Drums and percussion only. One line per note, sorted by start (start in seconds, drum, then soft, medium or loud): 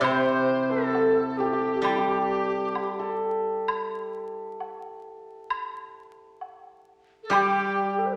0.04 high woodblock medium
0.95 low woodblock soft
1.85 high woodblock medium
2.75 high woodblock soft
2.75 low woodblock soft
3.68 high woodblock medium
4.60 low woodblock soft
5.50 high woodblock medium
6.41 low woodblock soft
7.33 high woodblock medium